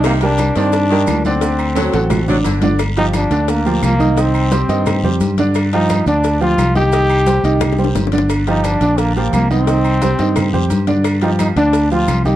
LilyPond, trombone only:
\new Staff \with { instrumentName = "Trombone" } { \time 4/4 \key c \dorian \tempo 4 = 174 bes8 d'4 d'2 c'8~ | c'2. r4 | r8 ees'8 d'4 bes4 bes4 | c'2. r4 |
r8 ees'4 d'4 f'4 g'8~ | g'2. r4 | r8 ees'8 d'4 bes8 bes8 bes8 c'8~ | c'2. r4 |
r8 ees'8 ees'8 d'4 f'4 g'8 | }